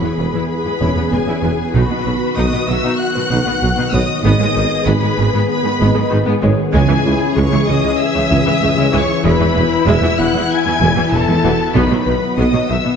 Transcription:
Already playing: french horn section B3 G#4, analog synth pad B3 E4 G#4 B4, felt piano E4, viola section G#4, violin section B4 B5
0.03 cello section E2, synth pluck B3, viola section B3
0.19 tuba E1, double bass section E1, cello section E2, viola section G#3, synth pluck E4
0.34 cello section E2, synth pluck E3, viola section E4
0.49 violin section B4 B5
0.65 cello section E2, viola section G#3, synth pluck E4
0.81 double bass section E1, tuba E1, cello section E2, synth pluck E3, felt piano C#4 C#5, viola section E4
0.96 cello section E2, viola section B3, synth pluck E4
1.11 double bass section E1, tuba E1, cello section E2, viola section G#3, synth pluck B3, violin section G#4 G#5
1.27 cello section E2, synth pluck E3, viola section E4
1.42 double bass section E1, tuba E1, cello section E2, viola section B3, synth pluck E4
1.73 double bass section B1, tuba B1, cello section B2, french horn section D#3, analog synth pad D#3 F#4, synth pluck B3, viola section D#4 F#4, violin section B4 B5
1.90 cello section B2, viola section B3, synth pluck D#4
2.05 double bass section B1, tuba B1, cello section B2, viola section F#3, synth pluck B4
2.36 double bass section B1, tuba B1, cello section B2, synth pluck B3, viola section D#4, violin section D#5 D#6
2.52 cello section B2, viola section B3, synth pluck F#4
2.68 double bass section B1, tuba B1, cello section B2, viola section F#3, synth pluck B4, violin section E5 E6
2.84 cello section B2, synth pluck B3, viola section D#4
2.99 violin section F#5 F#6
3.15 cello section B2, viola section F#3, synth pluck B4
3.30 double bass section B1, tuba B1, cello section B2, synth pluck B3, viola section D#4
3.46 cello section B2, viola section B3, synth pluck B4
3.62 double bass section B1, tuba B1, cello section B2, viola section F#3, synth pluck F#4
3.77 cello section B2, synth pluck B3, viola section D#4
3.92 tuba B1, double bass section B1, cello section B2, viola section B3, synth pluck B4, felt piano C#5, violin section D#5 D#6
4.23 double bass section G#1, tuba G#1, cello section G#2, synth pluck G#3, analog synth pad B3 G#4 B4, french horn section B3, viola section B3 G#4, violin section D#5 D#6
4.39 cello section G#2, viola section G#3, synth pluck B3
4.54 double bass section G#1, tuba G#1, cello section G#2, viola section D#3, synth pluck G#4
4.85 double bass section G#1, tuba G#1, cello section G#2, synth pluck G#3, viola section B3, violin section B4 B5
5.01 cello section G#2, viola section G#3, synth pluck D#4
5.16 double bass section G#1, tuba G#1, cello section G#2, viola section D#3, synth pluck G#4
5.32 cello section G#2, synth pluck G#3, viola section B3
5.49 violin section B4 B5
5.64 cello section G#2, viola section D#3, synth pluck G#4
5.80 double bass section G#1, tuba G#1, cello section G#2, synth pluck G#3, viola section B3, felt piano D#4 D#5
5.94 cello section G#2, viola section G#3, synth pluck G#4
6.11 tuba G#1, double bass section G#1, cello section G#2, viola section D#3, synth pluck D#4
6.27 cello section G#2, synth pluck G#3, viola section B3
6.42 tuba G#1, double bass section G#1, cello section G#2, viola section G#3, synth pluck G#4, felt piano C#5
6.72 tuba C#2, cello section C#2, double bass section C#2, synth pluck C#3, analog synth pad E3 C#4 C#5, french horn section E3 C#4, viola section G#3 G#4, violin section G#4 G#5
6.89 cello section C#2, viola section E3, synth pluck E3
7.05 tuba C#2, double bass section C#2, cello section C#2, viola section C#3, synth pluck C#4, felt piano E4
7.36 tuba C#2, double bass section C#2, cello section C#2, synth pluck C#3, viola section G#3, violin section C#5 C#6
7.52 cello section C#2, viola section E3, synth pluck G#3
7.68 double bass section C#2, cello section C#2, tuba C#2, viola section C#3, synth pluck C#4, violin section D#5 D#6
7.84 cello section C#2, synth pluck C#3, viola section G#3
8.00 violin section E5 E6
8.15 cello section C#2, viola section C#3, synth pluck C#4
8.30 double bass section C#2, cello section C#2, tuba C#2, synth pluck C#3, viola section G#3
8.46 cello section C#2, viola section E3, synth pluck C#4
8.62 double bass section C#2, tuba C#2, cello section C#2, viola section C#3, synth pluck G#3
8.77 cello section C#2, synth pluck C#3, viola section G#3
8.93 cello section C#2, tuba C#2, double bass section C#2, viola section E3, synth pluck C#4, violin section C#5 C#6
9.24 tuba E1, double bass section E1, cello section E2, synth pluck E3, viola section G#3 E4, analog synth pad B3 B4 E5, french horn section E4, violin section B4 B5
9.40 cello section E2, viola section E3, synth pluck G#3
9.55 tuba E1, double bass section E1, cello section E2, viola section E3, synth pluck E4
9.86 tuba E1, double bass section E1, cello section E2, synth pluck E3, viola section G#3, violin section E5 E6, felt piano E5
10.02 cello section E2, viola section E3, synth pluck B3
10.19 tuba E1, double bass section E1, cello section E2, viola section E3, synth pluck E4, violin section F#5 F#6
10.34 cello section E2, synth pluck E3, viola section G#3
10.51 violin section G#5 G#6
10.65 cello section E2, viola section E3, synth pluck E4
10.81 tuba E1, double bass section E1, cello section E2, synth pluck E3, viola section G#3
10.96 cello section E2, viola section E3, synth pluck E4
11.12 tuba E1, double bass section E1, cello section E2, viola section E3, synth pluck B3, violin section A4 A5
11.28 cello section E2, synth pluck E3, viola section G#3
11.44 tuba E1, double bass section E1, cello section E2, viola section E3, synth pluck E4, felt piano F#4 F#5
11.74 tuba B1, double bass section B1, cello section B2, viola section D#3 B3, analog synth pad F#3 F#5, french horn section B3, synth pluck B3, violin section B4 B5
11.91 cello section B2, viola section F#3, synth pluck D#4
12.06 double bass section B1, tuba B1, cello section B2, viola section D#3, synth pluck B4
12.37 double bass section B1, tuba B1, cello section B2, french horn section D#3, synth pluck B3, viola section B3, violin section D#5 D#6
12.53 cello section B2, viola section F#3, synth pluck F#4
12.68 tuba B1, double bass section B1, cello section B2, viola section D#3, synth pluck B4, violin section E5 E6
12.84 cello section B2, synth pluck B3, viola section B3

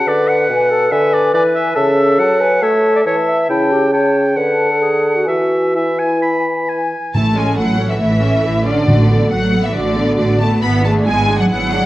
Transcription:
0.07 bassoon D3, clarinet B4, oboe D5, flute section F#5
0.29 oboe F#5
0.49 bassoon B2, flute section G#5
0.71 clarinet A4, flute section A5
0.91 bassoon D3, clarinet B4, oboe E5, flute section G#5
1.13 oboe D5
1.33 bassoon E3, clarinet B4, oboe D5, flute section G#5
1.55 oboe E5
1.75 bassoon C#3, clarinet A4, oboe E5, flute section A5
2.19 bassoon F#3, oboe F#5, flute section A5
2.40 clarinet B4, flute section G#5
2.62 bassoon A3, clarinet C#5, oboe E5, flute section A5
2.96 clarinet D5
3.05 bassoon E3, clarinet C#5, oboe E5, flute section A5
3.28 clarinet E5
3.48 bassoon C#3, clarinet E4, oboe G5, flute section A5
3.71 clarinet G4
3.92 clarinet C#5, oboe G5, flute section A5
4.35 bassoon D3, clarinet B4, oboe F#5, flute section A5
4.70 clarinet A4
4.82 clarinet G#4
5.16 clarinet F#4
5.27 bassoon E3, clarinet F#4, oboe E5, flute section G#5
5.75 clarinet E4, oboe E5, flute section G#5
5.99 oboe G#5
6.23 oboe B5
6.69 oboe G#5
7.14 double bass section A1, timpani A2, cello section A3, viola section A3 E4, violin section A5
7.35 cello section G#3, viola section C#4 A4, violin section G#5
7.57 double bass section A1, cello section F#3, viola section A3 E4, violin section F#5
7.79 viola section C#4 A4
7.89 cello section E3, violin section E5
8.00 double bass section A1, cello section E3, viola section A3 E4, violin section E5
8.22 viola section C#4 A4
8.44 double bass section A1, viola section A3 E4
8.66 cello section D3, viola section C#4 A4, violin section D5
8.88 double bass section A1, timpani A2, viola section A3 F#4
9.10 viola section B3 A4
9.32 double bass section A1, cello section F#3, viola section A3 F#4, violin section F#5
9.53 viola section B3 A4
9.64 cello section E3, violin section E5
9.75 double bass section A1, cello section D3, viola section A3 F#4, violin section D5
9.97 viola section B3 A4
10.19 double bass section A1, viola section A3 F#4
10.40 cello section A3, viola section B3 A4, violin section A5
10.62 double bass section G#1, cello section B3, viola section B3 E4, violin section B5
10.84 cello section A3, viola section D4 G#4, violin section A5
11.06 double bass section G#1, cello section G#3, viola section B3 E4, violin section G#5
11.29 viola section D4 G#4
11.39 cello section F#3, violin section F#5
11.50 double bass section G#1, cello section F#3, viola section B3 E4, violin section F#5
11.72 viola section D4 G#4

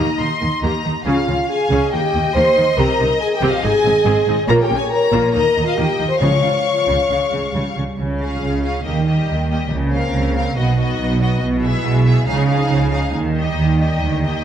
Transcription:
Already playing: viola section A#3 G4, french horn section D#4, violin section D#5 A#5
0.19 double bass section D#2, cello section D#3, viola section A#3 D#4, violin section C6
0.41 double bass section D#2, cello section D#3, viola section A#3
0.62 double bass section D#2, cello section D#3, viola section A#3 G4, violin section A#5
0.84 double bass section D#2, cello section D#3, viola section A#3 D#4
1.06 double bass section C#2, cello section C#3, viola section C#4 G#4, french horn section F4, violin section F5
1.27 double bass section C#2, cello section C#3, viola section C#4 F4
1.49 french horn section G#4, violin section G#5
1.70 double bass section C#2, cello section C#3, viola section C#4 G#4
1.92 double bass section D#2, cello section D#3, viola section A#3 D#4, french horn section G4, violin section D#5 G5
2.13 double bass section D#2, cello section D#3, viola section A#3
2.34 double bass section D#2, cello section D#3, viola section A#3 G4, french horn section C5, violin section C6
2.55 double bass section D#2, cello section D#3, viola section A#3 D#4
2.77 double bass section C2, cello section C3, viola section C4 G4, french horn section A#4, violin section A#5
3.00 double bass section C2, cello section C3, viola section C4 D#4
3.20 french horn section G#4, violin section G#5
3.35 french horn section G4, violin section G5
3.42 double bass section C2, cello section C3, viola section C4 G4
3.49 french horn section F4, violin section F5
3.62 double bass section G#1, cello section G#2, viola section C4 D#4, french horn section G#4, violin section G#5
3.84 double bass section G#1, cello section G#2, viola section C4
4.05 double bass section G#1, cello section G#2, viola section C4 G#4
4.27 double bass section G#1, cello section G#2, viola section C4 D#4
4.48 double bass section A#1, cello section A#2, viola section A#3 F4, french horn section A#4, violin section C#5 A#5
4.63 french horn section G4, violin section G5
4.69 double bass section A#1, cello section A#2, viola section A#3 C#4
4.77 french horn section G#4, violin section G#5
4.91 french horn section A#4, violin section A#5
5.12 double bass section A#1, cello section A#2, viola section A#3 F4
5.33 double bass section D#2, cello section D#3, viola section A#3 D#4, french horn section A#4, violin section D#5 A#5
5.55 double bass section D#2, cello section D#3, viola section A#3
5.64 french horn section F4, violin section F5
5.75 double bass section D#2, cello section D#3, viola section A#3 G4, french horn section G4, violin section G5
5.99 double bass section D#2, cello section D#3, viola section A#3 D#4
6.09 french horn section C5, violin section C6
6.19 double bass section C#2, cello section C#3, timpani C#3, viola section F3 G#4, french horn section C#5, violin section F5
6.23 violin section C#6
6.42 double bass section C#2, cello section C#3, viola section F3 F4
6.66 viola section F3
6.87 double bass section C#2, cello section C#3
7.10 double bass section C#2, cello section C#3, viola section G#3
7.33 double bass section C#2, cello section C#3
7.54 double bass section C#2, cello section C#3, viola section G3
7.76 double bass section C#2, cello section C#3
7.98 double bass section C#2, cello section C#3, french horn section G#3 F4
8.19 viola section C#4, violin section G#4 F5
8.42 double bass section C#2, cello section C#3
8.62 viola section C#4, violin section G#4 F5
8.84 double bass section D#2, cello section D#3, french horn section G3 D#4, viola section A#3, violin section G4 D#5
9.06 viola section A#3, violin section G4 D#5
9.28 double bass section D#2, cello section D#3
9.50 viola section A#3, violin section G4 D#5
9.70 double bass section C#2, timpani C#3, cello section C#3, french horn section A#3 C4
9.93 viola section C4, violin section A#4 F5
10.14 double bass section C#2, cello section C#3
10.36 viola section C4, violin section A#4 F5
10.56 double bass section B1, cello section B2, french horn section F#3 D#4, viola section B3, violin section F#4 D#5
10.78 viola section B3, violin section F#4 D#5
10.99 double bass section B1, cello section B2
11.20 viola section B3, violin section F#4 D#5
11.41 double bass section B1, cello section B2, french horn section G#3 E4
11.62 viola section B3, violin section G#4 E5
11.83 double bass section B1, cello section B2
12.06 viola section B3, violin section G#4 E5
12.26 double bass section C#2, cello section C#3, french horn section F3 D#4, viola section D#4, violin section G#4 F5
12.48 viola section D#4, violin section G#4 F5
12.70 double bass section C#2, cello section C#3
12.92 viola section D#4, violin section G#4 F5
13.13 double bass section D#2, cello section D#3, french horn section G3
13.35 viola section D#4, violin section G4 D#5
13.57 double bass section D#2, cello section D#3
13.79 viola section D#4, violin section G4 D#5
14.01 double bass section D#2, cello section D#3
14.24 viola section D#4, violin section G4 D#5

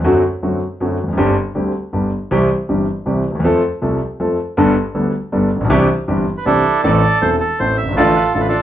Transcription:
0.04 grand piano F#2 D3 F#3 A3 C4 F#4
0.43 grand piano F#2 D3 F#3 A3 C4 F#4
0.80 grand piano F#2 D3 F#3 A3 C4 F#4
1.04 grand piano E2
1.08 grand piano F2
1.13 grand piano F#2
1.17 grand piano G1 G2 D3 G3 C4 G4
1.55 grand piano D2 D3 G3 C4 G4
1.93 grand piano G1 G2 D3 G3 B3 G4
2.31 grand piano C2 C3 E3 G3 C4 G4
2.69 grand piano G1 G2 E3 G3 C4 G4
3.06 grand piano C2 C3 E3 G3 C4 G4
3.30 grand piano D2
3.35 grand piano D#2
3.40 grand piano E2
3.44 grand piano F2 F3 A3 C4 A4
3.81 grand piano C2 C3 F3 A3 C4 A4
4.20 grand piano F2 F3 A3 C4 A4
4.57 grand piano G1 G2 G3 B3 D4 A4
4.95 grand piano D2 D3 G3 B3 D4 A4
5.32 grand piano G1 G2 G3 B3 D4 A4
5.56 grand piano A1
5.61 grand piano A#1 B1
5.70 grand piano C2 C3 E3 C4 D4 G4
6.08 grand piano G1 G2 E3 C4 D4 G4
6.38 bandoneon B4
6.45 grand piano C2 C3 E3 C4 D4 G4, bandoneon D4 E4 A4
6.83 grand piano A1 A2 E3 A3 C4 A4, bandoneon A4 D5
7.22 grand piano E1 E2 E3 A3 C4 A4, bandoneon C5
7.40 bandoneon A4
7.59 grand piano A1 A2 E3 A3 C4 A4, bandoneon C5
7.77 bandoneon E5
7.83 grand piano F#1
7.88 grand piano G1 G#1
7.97 grand piano A1 A2 D3 F3 A3 F4, bandoneon F4 A4 D5
8.16 bandoneon B4
8.34 grand piano A1 A2 D3 F3 A3 F4, bandoneon A4
8.41 bandoneon B4
8.48 bandoneon D4 F4 A4

